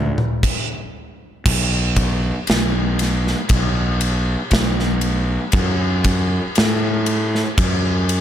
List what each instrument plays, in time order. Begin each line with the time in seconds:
Already playing: fingered electric bass D2
0.18 mid tom
0.43 kick, crash
1.46 fingered electric bass B1, kick, crash
1.96 kick, ride
2.47 fingered electric bass B1, snare, ride
2.99 snare, ride
3.27 snare
3.49 fingered electric bass B1, kick, ride
4.01 ride
4.51 fingered electric bass B1, kick, snare, ride
4.80 snare
5.01 ride
5.52 fingered electric bass F#2, kick, ride
6.04 kick, ride
6.55 fingered electric bass A2, snare, ride
7.06 ride
7.35 snare
7.58 fingered electric bass F#2, kick, ride
8.09 ride